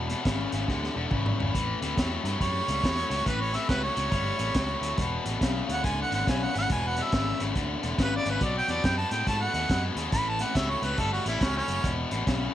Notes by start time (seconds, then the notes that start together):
Already playing: E1
0.09 E2 B2, snare, closed hi-hat
0.25 G#1 E2 C#3, kick, snare, closed hi-hat
0.52 G#1 E2 C#3, snare, closed hi-hat
0.67 D2 E2 D3, kick, snare
0.84 snare
0.95 E1 E2 D3
1.11 G#1 E2 C#3, kick, mid tom
1.26 mid tom
1.38 G#1 E2 C#3, floor tom
1.54 A1 A2 E3, kick, snare, closed hi-hat
1.82 D2 A2 E3, snare, closed hi-hat
1.96 E2 A2 F#3, kick, snare, closed hi-hat
2.24 G2 A2 F#3, snare, closed hi-hat
2.40 F#2 A2 G3 C#5, kick, snare, closed hi-hat
2.67 C#2 A2 G3, snare, closed hi-hat
2.82 E2 A2 F#3, kick, snare, closed hi-hat
3.10 C#2 A2 F#3, snare, closed hi-hat
3.25 A1 A2 E3 B4, kick, snare, closed hi-hat
3.41 C#5
3.53 A2 E3 E5, snare, closed hi-hat
3.68 C#2 A2 F#3 B4, kick, snare, closed hi-hat
3.84 C#5
3.95 C#2 A2 F#3, snare, closed hi-hat
4.11 G1 A2 G3, kick, snare, closed hi-hat
4.38 A1 A2 G3, snare, closed hi-hat
4.54 C#2 A2 F#3, kick, snare, closed hi-hat
4.81 D2 A2 F#3, snare, closed hi-hat
4.98 E1 E2 B2, kick, snare, closed hi-hat
5.25 A1 E2 B2, snare, closed hi-hat
5.41 B1 E2 C#3, kick, snare, closed hi-hat
5.67 D2 E2 C#3, snare, closed hi-hat
5.72 F#5
5.82 C#2 E2 D3 G#5, kick, snare, closed hi-hat
6.02 F#5
6.10 G#1 E2 D3, snare, closed hi-hat
6.14 F#5
6.25 B1 E2 C#3 G#5, kick, snare, closed hi-hat
6.43 F#5
6.53 G#1 E2 C#3, snare, closed hi-hat
6.58 F#5
6.70 E1 E2 B2 G#5, kick, snare, closed hi-hat
6.88 F#5
6.97 E2 B2, snare, closed hi-hat
7.03 E5
7.12 G#1 E2 C#3, kick, snare, closed hi-hat
7.39 G#1 E2 C#3, snare, closed hi-hat
7.55 D2 E2 D3, kick, snare, closed hi-hat
7.82 E1 E2 D3, snare, closed hi-hat
7.98 G#1 E2 C#3, kick, snare, closed hi-hat
8.02 B4
8.16 D5
8.25 G#1 E2 C#3, snare, closed hi-hat
8.30 B4
8.41 B1 B2 F#3 D5, kick, snare, closed hi-hat
8.58 G5
8.68 E2 B2 F#3 D5, snare, closed hi-hat
8.84 F#2 B2 G#3 G5, kick, snare, closed hi-hat
8.98 A5
9.11 A2 B2 G#3 G5, snare, closed hi-hat
9.27 G#2 B2 A3 A5, kick, snare, closed hi-hat
9.42 F#5
9.54 D#2 B2 A3, snare, closed hi-hat
9.69 F#2 B2 G#3, kick, snare, closed hi-hat
9.96 D#2 B2 G#3, snare, closed hi-hat
10.12 A1 A2 E3 B5, kick, snare, closed hi-hat
10.29 A5
10.39 A2 E3 F#5, snare, closed hi-hat
10.54 C#2 A2 F#3 E5, kick, snare, closed hi-hat
10.70 C#5
10.82 C#2 A2 F#3 B4, snare, closed hi-hat
10.98 G1 A2 G3 A4, kick, snare, closed hi-hat
11.13 F#4
11.25 A1 A2 G3 E4, snare, closed hi-hat
11.40 C#2 A2 F#3 C#4, kick, snare, closed hi-hat
11.57 C#4
11.68 F#1 A2 F#3, snare, closed hi-hat
11.82 E1 E2 B2, kick, snare, closed hi-hat
12.10 A1 E2 B2, snare, closed hi-hat
12.26 B1 E2 C#3, kick, snare, closed hi-hat